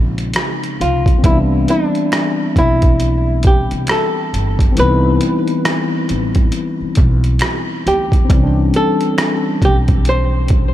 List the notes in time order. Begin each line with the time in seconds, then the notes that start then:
Already playing: A#1 C#3 F3 G#3 C4 D#4 F4
0.18 closed hi-hat
0.34 cross-stick, closed hi-hat
0.64 closed hi-hat
0.81 C2 F4, closed hi-hat
1.06 kick, closed hi-hat
1.19 E3 C4
1.24 C2 G3 E4, kick, closed hi-hat
1.28 B3 D4
1.68 D4, closed hi-hat
1.95 closed hi-hat
2.12 finger snap, cross-stick, closed hi-hat
2.56 B1 E4, kick, closed hi-hat
2.82 kick, closed hi-hat
3.00 closed hi-hat
3.43 G4, kick, closed hi-hat
3.71 C2, closed hi-hat
3.87 finger snap, cross-stick, closed hi-hat
3.91 A4
4.34 G1, closed hi-hat
4.59 kick, closed hi-hat
4.72 E3 C4
4.77 C2 G3 B4, closed hi-hat
4.81 B3 D#4
4.91 E4
5.21 closed hi-hat
5.48 closed hi-hat
5.65 finger snap, cross-stick, closed hi-hat
6.09 A1, closed hi-hat
6.35 kick, closed hi-hat
6.52 closed hi-hat
6.81 muted upright bass stroke
6.95 B1, kick, closed hi-hat
7.24 closed hi-hat
7.39 finger snap, cross-stick, closed hi-hat
7.86 D2 G4, closed hi-hat
8.12 kick, closed hi-hat
8.25 E3 C4
8.30 C2 G3, kick, closed hi-hat
8.37 C#4
8.43 D4
8.74 A4, closed hi-hat
9.01 closed hi-hat
9.18 finger snap, cross-stick, closed hi-hat
9.62 B1 G4, kick, closed hi-hat
9.88 kick, closed hi-hat
10.05 C5, closed hi-hat
10.48 kick, closed hi-hat